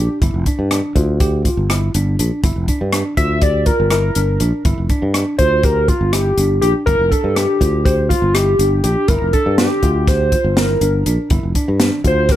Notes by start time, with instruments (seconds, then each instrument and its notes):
Already playing: tine electric piano D4
0.22 fretless electric bass G1, tine electric piano E4, kick, closed hi-hat
0.34 fretless electric bass F1
0.46 tine electric piano D4, kick, closed hi-hat
0.59 fretless electric bass G2
0.71 tine electric piano D4, cross-stick, closed hi-hat
0.96 fretless electric bass D2, tine electric piano F4, kick, closed hi-hat
1.20 tine electric piano G4, kick, closed hi-hat
1.45 tine electric piano F4, kick, closed hi-hat
1.57 fretless electric bass G1
1.70 tine electric piano E4, cross-stick, closed hi-hat
1.94 fretless electric bass G1, tine electric piano D4, closed hi-hat
2.19 fretless electric bass A#1, tine electric piano D4, closed hi-hat
2.44 fretless electric bass G1, tine electric piano E4, kick, closed hi-hat
2.56 fretless electric bass F1
2.68 tine electric piano D4, kick, closed hi-hat
2.81 fretless electric bass G2
2.93 tine electric piano D4, cross-stick, closed hi-hat
3.17 fretless electric bass D2, tine electric piano F4, analog synth lead E5, kick, closed hi-hat
3.42 tine electric piano G4, analog synth lead D5, kick, closed hi-hat
3.66 tine electric piano F4, analog synth lead A#4, kick, closed hi-hat
3.80 fretless electric bass G1
3.90 tine electric piano E4, analog synth lead A#4, cross-stick, closed hi-hat
4.15 fretless electric bass G1, tine electric piano D4, closed hi-hat
4.40 fretless electric bass A#1, tine electric piano D4, closed hi-hat
4.65 fretless electric bass G1, tine electric piano E4, kick, closed hi-hat
4.78 fretless electric bass F1
4.89 tine electric piano D4, kick, closed hi-hat
5.02 fretless electric bass G2
5.14 tine electric piano D4, cross-stick, closed hi-hat
5.38 fretless electric bass D2, tine electric piano F4, analog synth lead C5, kick, closed hi-hat
5.63 tine electric piano G4, analog synth lead A#4, kick, closed hi-hat
5.88 analog synth lead F4, tine electric piano F4, kick, closed hi-hat
6.01 fretless electric bass G1
6.12 tine electric piano E4, analog synth lead G4, cross-stick, closed hi-hat
6.37 fretless electric bass G1, tine electric piano D4, closed hi-hat
6.61 fretless electric bass A#1, tine electric piano D4, analog synth lead G4, closed hi-hat
6.86 fretless electric bass G1, tine electric piano E4, analog synth lead A#4, kick, closed hi-hat
6.99 fretless electric bass F1
7.11 tine electric piano D4, analog synth lead A4, kick, closed hi-hat
7.24 fretless electric bass G2
7.35 tine electric piano D4, analog synth lead G4, cross-stick, closed hi-hat
7.61 fretless electric bass D2, tine electric piano F4, kick, closed hi-hat
7.85 tine electric piano G4, analog synth lead C5, kick, closed hi-hat
8.09 analog synth lead F4, tine electric piano F4, kick, closed hi-hat
8.22 fretless electric bass G1
8.34 tine electric piano E4, analog synth lead G4, cross-stick, closed hi-hat
8.59 fretless electric bass G1, tine electric piano D4, closed hi-hat
8.84 fretless electric bass A#1, tine electric piano D4, analog synth lead G4, closed hi-hat
9.08 fretless electric bass G1, tine electric piano E4, analog synth lead A#4, kick, closed hi-hat
9.22 fretless electric bass F1
9.33 tine electric piano D4, analog synth lead A4, kick, closed hi-hat
9.46 fretless electric bass G2
9.58 tine electric piano D4, analog synth lead G4, snare, closed hi-hat
9.83 fretless electric bass D2, tine electric piano F4, kick, closed hi-hat
10.07 tine electric piano G4, analog synth lead C5, kick, snare, closed hi-hat
10.32 tine electric piano F4, kick, closed hi-hat
10.44 fretless electric bass G1
10.57 tine electric piano E4, analog synth lead A#4, snare, closed hi-hat
10.81 fretless electric bass G1, tine electric piano D4, closed hi-hat
11.06 fretless electric bass A#1, tine electric piano D4, closed hi-hat
11.30 fretless electric bass G1, tine electric piano E4, kick, closed hi-hat
11.43 fretless electric bass F1
11.55 tine electric piano D4, kick, closed hi-hat
11.68 fretless electric bass G2
11.80 tine electric piano D4, snare, closed hi-hat
12.04 fretless electric bass D2, tine electric piano F4, analog synth lead C5, kick, closed hi-hat
12.29 tine electric piano G4, analog synth lead A#4, kick, snare, closed hi-hat